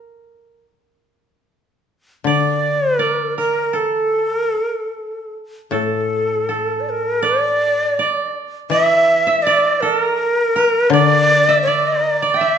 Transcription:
Already playing: koto A#4
2.24 koto D3 D5, shakuhachi D5
2.99 shakuhachi A#4, koto D5
3.38 koto A#4, shakuhachi A#4
3.73 koto A4, shakuhachi A4
4.30 koto A#4, shakuhachi A#4
4.42 koto A4, shakuhachi A4
4.61 koto A#4
4.66 shakuhachi A#4
4.73 koto A4
4.78 shakuhachi A4
5.71 koto A2 A4, shakuhachi A4
6.49 koto A4
6.80 shakuhachi D5
6.89 shakuhachi A#4
7.22 koto D5, shakuhachi D5
7.99 koto D5
8.70 koto E3 E5, shakuhachi E5
9.27 koto E5
9.42 shakuhachi D5
9.47 koto D5
9.81 koto A4, shakuhachi A#4
9.98 koto A#4
10.56 koto A#4
10.90 koto D3 D5, shakuhachi D5
11.48 koto E5
11.62 shakuhachi D5
11.67 koto D5
12.02 koto A#4
12.22 koto D5
12.34 shakuhachi E5, koto G5
12.41 koto E5

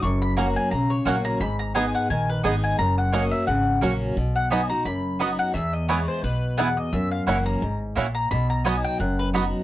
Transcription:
0.02 upright bass F#1, steel-string acoustic guitar F#2, mandolin C#6
0.22 mandolin B5
0.37 steel-string acoustic guitar F#3 A#3 C#4 F#4, mandolin A#3 F#4 C#5 F#5 A#5, five-string banjo C#4 F#4
0.56 mandolin G#5
0.71 upright bass B1, steel-string acoustic guitar C#3, mandolin A#5
0.90 mandolin C#5
1.05 upright bass A#1, steel-string acoustic guitar F#3 A#3 C#4 F#4, mandolin A#3 F#4 C#5 F#5, five-string banjo C#4 F#4
1.25 mandolin A#5
1.40 upright bass G#1, steel-string acoustic guitar G#2, mandolin B5
1.59 mandolin A#5
1.75 steel-string acoustic guitar G#3 B3 D#4 G#4, mandolin B3 G#4 D#5 G#5, five-string banjo B3 D#4 G#4
1.95 mandolin F#5
2.10 upright bass A#1, steel-string acoustic guitar D#3, mandolin G#5
2.30 mandolin B4
2.43 upright bass G#1, steel-string acoustic guitar G#3 B3 D#4 G#4, mandolin B3 G#4 D#5 G#5, five-string banjo B3 D#4 G#4
2.64 mandolin G#5
2.79 upright bass F#1, steel-string acoustic guitar F#2, mandolin A#5
2.98 mandolin F#5
3.12 steel-string acoustic guitar F#3 A#3 C#4 F#4, mandolin A#3 F#4 C#5 D#5 F#5, five-string banjo C#4 F#4
3.31 mandolin E5
3.47 upright bass G#1, steel-string acoustic guitar C#3, mandolin F#5
3.81 upright bass A#1, steel-string acoustic guitar F#3 A#3 C#4 F#4, mandolin A#3 F#4 C#5 F#5, five-string banjo C#4 F#4
4.17 upright bass B1, steel-string acoustic guitar B2
4.36 mandolin F#5
4.50 steel-string acoustic guitar F#3 B3 D#4 F#4, mandolin B3 F#4 D#5 G#5 B5, five-string banjo B3 D#4 F#4
4.70 steel-string acoustic guitar D#4 F#4, mandolin A#5
4.85 upright bass F#1, steel-string acoustic guitar F#2, mandolin B5
5.19 steel-string acoustic guitar F#3 B3 D#4 F#4, mandolin B3 F#4 D#5 B5, five-string banjo B3 D#4 F#4
5.39 mandolin F#5
5.54 upright bass E2, steel-string acoustic guitar E2, mandolin E5
5.73 mandolin D#5
5.88 steel-string acoustic guitar E3 G#3 B3 E4, mandolin B3 E4 B4 C#5 G#5, five-string banjo B3 E4 G#4
6.08 mandolin C5
6.23 upright bass B1, steel-string acoustic guitar B2, mandolin B4
6.57 steel-string acoustic guitar E2, mandolin B3 E4 B4 F#5 G#5, five-string banjo B3 E4 G#4
6.77 mandolin D#5
6.93 upright bass F#2, steel-string acoustic guitar F#2, mandolin E5
7.11 mandolin F5
7.27 upright bass F#1, steel-string acoustic guitar E3 A#3 C#4 F#4, mandolin A#3 E4 C#5 F#5, five-string banjo C#4 E4 F#4
7.46 mandolin A#5
7.62 upright bass G#1, steel-string acoustic guitar G#2
7.96 upright bass A#1, steel-string acoustic guitar A#2, mandolin A#3 E4 C#5 F#5, five-string banjo C#4 E4 F#4
8.15 mandolin A#5
8.31 upright bass B1, steel-string acoustic guitar B2, mandolin B5
8.50 mandolin A#5
8.65 steel-string acoustic guitar F#3 B3 D#4 F#4, mandolin B3 F#4 D#5 G#5 B5, five-string banjo B3 D#4 F#4
8.84 mandolin G5
9.00 upright bass F#1, steel-string acoustic guitar F#2, mandolin F#5
9.19 mandolin B4
9.33 steel-string acoustic guitar F#3 B3 D#4 F#4, mandolin B3 F#4 D#5 B5, five-string banjo B3 D#4 F#4

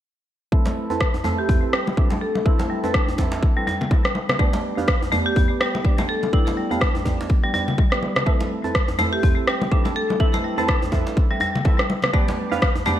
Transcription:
0.52 marimba A3, synth keys C4 E4 A4 B4 E5, kick
0.66 djembe slap, muted conga, high conga
0.90 synth keys C4 E4 A4 B4 A5, djembe tone
1.01 kick, cross-stick, muted conga
1.14 djembe tone
1.24 marimba A3, synth keys C4 E4 A4 B4 E5, muted conga, djembe slap, djembe bass
1.39 marimba G4
1.49 marimba C4, kick, muted conga, djembe bass
1.63 synth keys C4 E4 A4 B4 E5
1.73 marimba G3, cross-stick
1.87 muted conga, high conga
1.97 synth keys C4 E4 A4 B4 E5, marimba D4, kick
2.10 marimba A3, djembe slap, muted conga, high conga
2.21 marimba A4
2.35 muted conga, high conga
2.46 synth keys C4 E4 A4 B4 E5, marimba E4, kick
2.59 marimba A3, djembe slap, muted conga, high conga
2.70 marimba G3
2.84 marimba A3, synth keys C4 E4 A4 B4 A5, djembe tone
2.94 marimba D4, kick, cross-stick, muted conga
3.08 djembe tone
3.18 synth keys C4 E4 A4 B4 E5, kick, muted conga, djembe slap, djembe bass
3.32 djembe slap
3.43 kick, muted conga
3.56 marimba G3, synth keys C4 E4 A4 B4 E5
3.67 marimba G3, djembe tone
3.81 muted conga, low conga
3.91 synth keys C4 E4 A4 B4 E5, kick, high conga
4.05 cross-stick, muted conga
4.15 high conga
4.29 cross-stick, muted conga, low conga
4.39 marimba A3, synth keys B3 D4 G4 B4 D5, kick
4.53 djembe slap, muted conga, high conga
4.77 synth keys B3 D4 G4 B4 F5, djembe tone
4.88 kick, cross-stick, muted conga
5.02 djembe tone
5.12 marimba A3, synth keys B3 D4 G4 B4 D5, djembe slap, muted conga, djembe bass
5.26 marimba G4
5.36 marimba B3, kick, muted conga, djembe bass
5.50 synth keys B3 D4 G4 B4 D5
5.60 marimba G3, cross-stick
5.75 muted conga, high conga
5.84 synth keys B3 D4 G4 B4 D5, marimba D4, kick
5.98 marimba A3, djembe slap, muted conga, high conga
6.09 marimba A4
6.23 muted conga, high conga
6.33 synth keys B3 D4 G4 B4 D5, marimba E4, kick
6.47 marimba A3, muted conga, djembe slap, high conga
6.57 marimba G3
6.71 marimba A3, synth keys B3 D4 G4 B4 F5, djembe tone
6.81 marimba D4, kick, cross-stick, muted conga
6.95 djembe tone
7.05 synth keys B3 D4 G4 B4 D5, kick, djembe slap, muted conga, djembe bass
7.21 djembe slap
7.30 kick, muted conga
7.43 marimba G3, synth keys B3 D4 G4 B4 D5
7.54 marimba G3, synth keys B3 D4 G4 B4 D5, djembe tone
7.68 muted conga, low conga
7.78 kick, high conga
7.92 synth keys B3 D4 G4 B4 D5, cross-stick, muted conga
8.02 synth keys B3 D4 G4 B4 D5, high conga
8.16 cross-stick, muted conga, low conga
8.26 marimba A3, synth keys C4 E4 A4 B4 E5, kick
8.41 djembe slap, muted conga, high conga
8.64 synth keys C4 E4 A4 B4 A5, djembe tone
8.75 kick, cross-stick, muted conga
8.88 djembe tone
8.99 marimba A3, synth keys C4 E4 A4 B4 E5, djembe slap, muted conga, djembe bass
9.13 marimba G4
9.23 marimba C4, kick, muted conga, djembe bass
9.37 synth keys C4 E4 A4 B4 E5
9.47 marimba G3, cross-stick
9.62 muted conga, high conga
9.71 synth keys C4 E4 A4 B4 E5, marimba D4, kick
9.85 marimba A3, djembe slap, muted conga, high conga
9.96 marimba A4
10.10 muted conga, high conga
10.20 synth keys C4 E4 A4 B4 E5, marimba E4, kick
10.34 marimba A3, muted conga, djembe slap, high conga
10.44 marimba G3
10.58 marimba A3, synth keys C4 E4 A4 B4 A5, djembe tone
10.68 marimba D4, kick, cross-stick, muted conga
10.82 djembe tone
10.92 synth keys C4 E4 A4 B4 E5, kick, djembe slap, muted conga, djembe bass
11.07 djembe slap
11.17 kick, muted conga
11.30 marimba G3, synth keys C4 E4 A4 B4 E5
11.40 marimba G3, djembe tone
11.55 muted conga, low conga
11.65 synth keys C4 E4 A4 B4 E5, kick, high conga
11.79 cross-stick, muted conga
11.90 high conga
12.02 cross-stick, muted conga, low conga
12.13 marimba A3, synth keys B3 D4 G4 B4 D5, kick
12.28 muted conga, djembe slap, high conga
12.51 synth keys B3 D4 G4 B4 F5, djembe tone
12.62 kick, cross-stick, muted conga
12.76 djembe tone
12.86 marimba A3, synth keys B3 D4 G4 B4 D5, djembe slap, muted conga, djembe bass

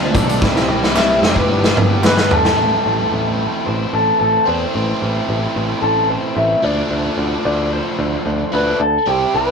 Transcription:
Already playing: picked electric bass D2, string machine D3 C4 F4, overdriven electric guitar F3, clean electric guitar C5
0.00 muted overdriven electric guitar stroke
0.13 picked electric bass B1, overdriven electric guitar F3 A3 D4 A4, clean electric guitar D5, kick, closed hi-hat
0.27 overdriven electric guitar A3 D4 A4, closed hi-hat
0.40 picked electric bass C2, overdriven electric guitar E3 C4 E4 G4, string machine E3, kick, snare
0.45 string machine G4
0.56 snare
0.68 picked electric bass C2, overdriven electric guitar E3 C4 E4 G4
0.83 snare
0.94 picked electric bass C2, overdriven electric guitar E3 C4 E4 G4, clean electric guitar E5, snare, clap
1.07 overdriven electric guitar C4 E4 G4
1.20 picked electric bass F1, overdriven electric guitar E3 C4 E4 G4, clean electric guitar B4, snare
1.35 overdriven electric guitar C4 E4 G4, kick
1.49 picked electric bass G1, overdriven electric guitar B3 D4 G4, string machine B3
1.62 overdriven electric guitar D4 G4, snare
1.75 picked electric bass G1, overdriven electric guitar B3 D4 G4, mid tom
2.02 picked electric bass G1, overdriven electric guitar B3 D4 G4, clean electric guitar B4, snare, clap
2.17 muted overdriven electric guitar stroke, snare
2.30 overdriven electric guitar B3 D4 G4, clean electric guitar A4, floor tom
2.42 overdriven electric guitar D4 G4, snare
2.54 overdriven electric guitar E3 A3 C4
2.59 picked electric bass A1
2.86 picked electric bass A1
3.12 picked electric bass A1
3.66 picked electric bass A1, clean electric guitar C5
3.93 picked electric bass A1, clean electric guitar A4
4.20 picked electric bass A1, clean electric guitar A4
4.45 picked electric bass E2, overdriven electric guitar E3 A3 C4, clean electric guitar C5
4.73 picked electric bass A1, overdriven electric guitar E3 A3 C4
5.02 picked electric bass A1
5.29 picked electric bass A1
5.56 picked electric bass A1
5.81 picked electric bass A1, clean electric guitar A4
6.09 clean electric guitar C5
6.36 picked electric bass A1, clean electric guitar E5
6.62 picked electric bass D2, overdriven electric guitar F3 A3 D4, clean electric guitar D5
6.91 picked electric bass D2
7.18 picked electric bass D2
7.45 picked electric bass D2, clean electric guitar D5
7.73 clean electric guitar C5
7.99 picked electric bass D2
8.26 picked electric bass D2
8.52 picked electric bass D2, overdriven electric guitar F3 A3 D4, clean electric guitar B4
8.80 picked electric bass D2, clean electric guitar A4
9.06 picked electric bass C2, overdriven electric guitar G3 C4 E4 G4, clean electric guitar G4
9.34 picked electric bass C2, clean electric guitar B4

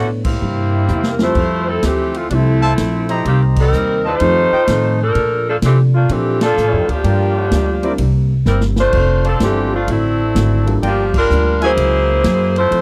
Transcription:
Already playing: upright bass A2, hollow-body jazz guitar B3 D4 A4 C#5
0.25 saxophone section G3 A#3 C4 E4, kick, crash
0.41 upright bass G2, hollow-body jazz guitar C3 A#3 E4 G4
0.88 upright bass E2, hollow-body jazz guitar C3 A#3 E4 G4, hi-hat pedal
1.03 snare
1.11 saxophone section A#4
1.19 grand piano F3 G3 A3 C4 E5, saxophone section A3 E4 F4 C5, snare
1.35 upright bass F2, hollow-body jazz guitar F3 A3 C4 E4, kick, crash
1.68 saxophone section F3 C4 E4 A4
1.83 upright bass D2, saxophone section E3 A3 C4 G4, hollow-body jazz guitar F3 A3 C4 E4, kick, snare, hi-hat pedal, ride
2.14 saxophone section E3 A3 C4 F4, ride
2.29 upright bass C2, hollow-body jazz guitar F3 A3 C4 E4, grand piano F3 G3 A3 C4 E4, saxophone section D4, kick, ride
2.33 saxophone section F3 A3 C4 E4
2.62 trumpet section F4 C5 E5 A5
2.77 upright bass A#1, hollow-body jazz guitar F3 A3 C4 E4, kick, snare, hi-hat pedal, ride
3.09 trumpet section G4 C5 D#5 A#5, ride
3.25 upright bass C2, hollow-body jazz guitar C3 G3 A#3 D#4, saxophone section D#3 A#3 C4 G4, kick, ride
3.56 saxophone section G3 C4 D#4 A#4, kick, crash
3.72 upright bass D#2, hollow-body jazz guitar C3 G3 A#3 D#4, hi-hat pedal
4.04 saxophone section A3 D#4 F4 C5, trumpet section F4 C5 D#5 A5
4.20 hollow-body jazz guitar F2 D#3 A3 C4, upright bass F2, grand piano F3 A3 C4 D#4 G4, kick, ride
4.52 trumpet section F4 C5 D#5 G5, muted upright bass stroke
4.67 hollow-body jazz guitar F2 D#3 A3 C4, upright bass A2, kick, snare, hi-hat pedal, ride
5.02 saxophone section F3 D4 A4 A#4
5.14 hollow-body jazz guitar A#2 F3 A3 D4, upright bass A#2, kick, ride
5.49 saxophone section F3 A#3 D4 A4
5.62 hollow-body jazz guitar A#2 F3 A3 D4, upright bass C3, saxophone section E3 A3 C4 G4, kick, snare, hi-hat pedal, ride
5.95 saxophone section A3 A#3 D4 F4
6.09 upright bass A#2, hollow-body jazz guitar A#2 F3 A3 D4, saxophone section E3 A3 C4 G4, grand piano F3 A#3 C4 D4 A4, kick, ride
6.41 saxophone section F3 A#3 D4 A4, trumpet section F4 A4 D5 A5, snare, ride
6.57 upright bass A2, hollow-body jazz guitar A#2 F3 A3 D4, hi-hat pedal
6.73 upright bass F2
6.88 upright bass D2, saxophone section F3 A#3 D4 G4, ride
7.04 upright bass G2, hollow-body jazz guitar G2 F3 A#3 D4, grand piano G3 A#3 D4 F4 A4, trumpet section F4 A#4 D5 G5, kick, ride
7.51 upright bass D2, hollow-body jazz guitar G2 F3 A#3 D4, kick, snare, hi-hat pedal, ride
7.83 grand piano G3 C4 D4 E4 A#4, trumpet section E4 A#4 C5 D5, ride
7.98 upright bass C2, hollow-body jazz guitar C3 G3 A#3 E4, kick, ride
8.45 upright bass G1, hollow-body jazz guitar C3 G3 A#3 E4, saxophone section G3 C4 E4 A#4, snare, hi-hat pedal
8.61 snare
8.76 saxophone section A3 D4 F4 C5, snare
8.93 upright bass F1, hollow-body jazz guitar F3 C4 D4 A4, kick, crash
9.24 saxophone section F3 C4 D4 A4, trumpet section F4 C5 D5 A5, ride
9.40 upright bass G1, saxophone section E3 A3 C4 G4, hollow-body jazz guitar F3 C4 D4 A4, grand piano G3 C4 D4 F4 A4, kick, snare, hi-hat pedal, ride
9.74 saxophone section A3 C4 D4 F4
9.88 upright bass A1, hollow-body jazz guitar D3 A3 C4 F#4, saxophone section A3 C4 D4 E4, kick, ride
10.35 upright bass G#1, hollow-body jazz guitar D3 A3 C4 F#4, kick, snare, hi-hat pedal, ride
10.66 grand piano G3 A#3 D4 F4 A4, ride
10.82 upright bass G1, hollow-body jazz guitar G2 F3 A#3 D4, saxophone section F3 A#3, trumpet section F4 A#4 D5 G5, kick, ride
10.86 saxophone section D4 G4
11.14 saxophone section G3 D4 F4 A#4, kick, crash
11.30 upright bass D2, hollow-body jazz guitar G2 F3 A#3 D4, hi-hat pedal
11.61 grand piano F#3 A#3 C#4 E4 G#4, saxophone section A#3 E4 G#4 C5, trumpet section F#4 A#4 E5 G#5, ride
11.77 upright bass C#2, hollow-body jazz guitar F#3 A#3 E4 G#4, kick, ride
12.24 upright bass F#2, hollow-body jazz guitar F#3 A#3 E4 G#4, kick, snare, hi-hat pedal, ride
12.56 saxophone section A3 E4 F4 C5, ride
12.71 upright bass F2, hollow-body jazz guitar F3 A3 C4 E4, kick, ride

